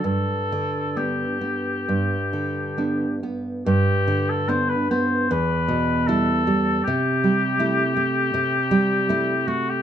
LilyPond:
<<
  \new Staff \with { instrumentName = "Oboe" } { \time 4/4 \key g \major \tempo 4 = 75 a'4 g'2~ g'8 r8 | g'8. a'16 c''16 b'16 c''8 b'4 a'4 | g'2.~ g'8 fis'16 g'16 | }
  \new Staff \with { instrumentName = "Nylon-string guitar" } { \time 4/4 \key g \major g,8 d8 <b d'>8 b8 g,8 d8 <b d'>8 b8 | g,8 d8 <b d'>8 b8 e,8 b,8 <g e'>8 g8 | c8 g8 <a e'>8 a8 c8 g8 <a e'>8 a8 | }
>>